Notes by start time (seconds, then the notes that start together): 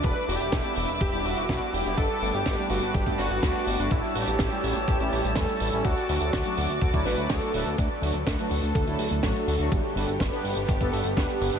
Already playing: D6
0.03 E1 G3 B4 E5 B5, kick, closed hi-hat
0.28 E1 G3 B3 D4 E4 G4, open hi-hat
0.40 E1, closed hi-hat
0.52 E1, kick, snare, closed hi-hat
0.64 G3 B3 D4 E4, closed hi-hat
0.76 E1, open hi-hat
0.88 E1, closed hi-hat
1.01 E1 G4, kick, closed hi-hat
1.13 E1 G3 B3 D4 E4, closed hi-hat
1.25 E1 F#4, open hi-hat
1.37 E1, closed hi-hat
1.49 B1 G3 B3 D4 E4, kick, snare, closed hi-hat
1.61 closed hi-hat
1.73 E1 G4, open hi-hat
1.85 E1 G3 B3 D4 E4, closed hi-hat
1.97 G1 A4 B4 A5, kick, closed hi-hat
2.21 G1 G3 A3 B3 D4, open hi-hat
2.34 G1 G4, closed hi-hat
2.45 G1, kick, snare, closed hi-hat
2.58 G3 A3 B3 D4, closed hi-hat
2.69 G1 F#4, open hi-hat
2.82 G1, closed hi-hat
2.94 G1 G4, kick, closed hi-hat
3.06 G1 G3 A3 B3 D4, kick, closed hi-hat
3.18 G1 F#4, snare, open hi-hat
3.30 G1, closed hi-hat
3.43 D2 G3 A3 B3 D4, kick, snare, closed hi-hat
3.55 closed hi-hat
3.67 G1, open hi-hat
3.78 G1 G3 A3 B3 D4, closed hi-hat
3.90 A1 E4 C#5 E6, kick, closed hi-hat
4.15 A1 G3 A3 C#4 E4 G4, open hi-hat
4.27 A1, closed hi-hat
4.39 A1, kick, snare, closed hi-hat
4.51 G3 A3 C#4 E4, closed hi-hat
4.63 A1, open hi-hat
4.75 A1, closed hi-hat
4.88 A1 G4, kick, closed hi-hat
5.00 A1 G3 A3 C#4 E4, closed hi-hat
5.12 A1, open hi-hat
5.24 A1, closed hi-hat
5.36 E2 G3 A3 C#4 E4 A4, kick, snare, closed hi-hat
5.48 closed hi-hat
5.60 A1, open hi-hat
5.72 A1 G3 A3 C#4 E4, closed hi-hat
5.84 D2 F#4 D5 D6, kick, closed hi-hat
5.97 closed hi-hat
6.08 D2 F#3 A3 D4 F#4, open hi-hat
6.20 D2, closed hi-hat
6.33 D2 F#4, kick, snare, closed hi-hat
6.45 F#3 A3 D4 F#4, closed hi-hat
6.57 D2, open hi-hat
6.69 D2, closed hi-hat
6.81 D2, kick, closed hi-hat
6.93 D2 F#3 A3 D4 E4, kick, open hi-hat
7.05 A1 B4, snare, open hi-hat
7.17 D2 F#3 A3 D4 F#4, closed hi-hat
7.29 D2 A4, kick, snare, closed hi-hat
7.42 F#3 A3 D4 F#4, closed hi-hat
7.54 D1 F#3 A3 D4 B4, open hi-hat
7.66 D2, closed hi-hat
7.78 D2 D3 A3 F#4 A4 D5, kick, closed hi-hat
8.02 D2 F#3 A3 D4 F#4, open hi-hat
8.14 D2, closed hi-hat
8.26 D2 B4, kick, snare, closed hi-hat
8.39 F#3 A3 D4 F#4, closed hi-hat
8.51 D2, open hi-hat
8.63 D2, closed hi-hat
8.75 D2 A4, kick, closed hi-hat
8.87 D2 F#3 A3 D4 E4, closed hi-hat
8.99 D2 A4, open hi-hat
9.11 D2, closed hi-hat
9.23 A1 F#3 A3 D4 F#4, kick, snare, closed hi-hat
9.36 closed hi-hat
9.47 D2, open hi-hat
9.59 D2 F#3 A3 D4 F#4, closed hi-hat
9.71 G1 G3 B3 G4, kick, closed hi-hat
9.95 G1 B3 D4 G4 A4 B4, open hi-hat
10.08 G1, closed hi-hat
10.19 G1 B4, kick, snare, closed hi-hat
10.32 B3 D4 G4 B4, closed hi-hat
10.44 G1, open hi-hat
10.55 G1, closed hi-hat
10.68 G1, kick, closed hi-hat
10.81 G1 B3 D4 G4 A4, kick, closed hi-hat
10.92 G1 A4, open hi-hat
11.05 G1, closed hi-hat
11.16 D2 B3 D4 G4 B4, kick, snare, closed hi-hat
11.30 closed hi-hat
11.41 G1, open hi-hat
11.53 G1 B3 D4 G4 B4, closed hi-hat